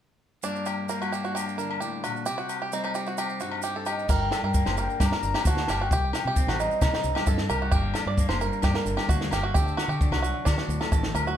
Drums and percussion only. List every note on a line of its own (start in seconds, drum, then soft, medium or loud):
0.43 maracas medium
0.56 maracas soft
0.66 low agogo medium
0.66 maracas medium
0.89 maracas medium
1.02 low agogo medium
1.02 maracas soft
1.13 maracas medium
1.24 maracas soft
1.36 low agogo medium
1.36 maracas medium
1.49 maracas soft
1.59 maracas medium
1.71 low agogo medium
1.82 maracas medium
2.04 low agogo medium
2.04 maracas medium
2.16 maracas soft
2.26 maracas medium
2.38 maracas soft
2.49 low agogo medium
2.49 maracas medium
2.72 maracas medium
2.84 low agogo medium
2.84 maracas soft
2.94 maracas medium
3.06 maracas soft
3.18 low agogo medium
3.18 maracas medium
3.29 maracas soft
3.40 maracas medium
3.51 low agogo medium
3.62 maracas medium
3.86 low agogo medium
3.86 maracas medium
3.99 maracas soft
4.09 kick medium
4.09 crash medium
4.09 maracas medium
4.31 snare medium
4.31 low agogo medium
4.31 maracas medium
4.54 kick medium
4.54 maracas medium
4.66 snare medium
4.66 low agogo medium
4.66 maracas soft
4.77 maracas medium
4.90 maracas soft
5.00 kick medium
5.00 snare medium
5.00 low agogo medium
5.00 maracas medium
5.12 snare medium
5.23 maracas medium
5.34 snare medium
5.34 low agogo medium
5.45 kick medium
5.45 maracas medium
5.57 snare medium
5.68 snare medium
5.68 low agogo medium
5.68 maracas medium
5.91 kick medium
5.91 maracas medium
6.13 snare medium
6.13 low agogo medium
6.13 maracas medium
6.36 kick medium
6.36 maracas medium
6.48 snare medium
6.48 low agogo medium
6.48 maracas soft
6.60 maracas medium
6.71 maracas soft
6.82 kick medium
6.82 snare medium
6.82 low agogo medium
6.82 maracas medium
6.93 snare medium
7.04 maracas medium
7.15 snare medium
7.15 low agogo medium
7.26 kick medium
7.26 maracas medium
7.38 snare medium
7.50 low agogo medium
7.50 maracas medium
7.72 kick medium
7.72 maracas medium
7.94 snare medium
7.94 low agogo medium
7.94 maracas medium
8.18 kick medium
8.18 maracas medium
8.29 snare medium
8.29 low agogo medium
8.29 maracas soft
8.41 maracas medium
8.53 maracas soft
8.62 kick medium
8.62 snare medium
8.62 low agogo medium
8.62 maracas medium
8.74 snare medium
8.86 maracas medium
8.97 snare medium
8.97 low agogo medium
9.09 kick medium
9.09 maracas medium
9.21 snare medium
9.31 snare medium
9.31 low agogo medium
9.31 maracas medium
9.55 kick medium
9.55 maracas medium
9.68 maracas soft
9.77 snare medium
9.77 low agogo medium
9.77 maracas medium
9.91 maracas soft
10.01 kick medium
10.01 maracas medium
10.12 snare medium
10.12 low agogo medium
10.12 maracas soft
10.24 maracas medium
10.46 kick medium
10.46 snare medium
10.46 low agogo medium
10.46 maracas medium
10.58 snare medium
10.70 maracas medium
10.81 snare medium
10.81 low agogo medium
10.81 maracas soft
10.92 kick medium
10.92 maracas medium
11.03 snare medium
11.15 low agogo medium
11.15 maracas medium
11.27 maracas soft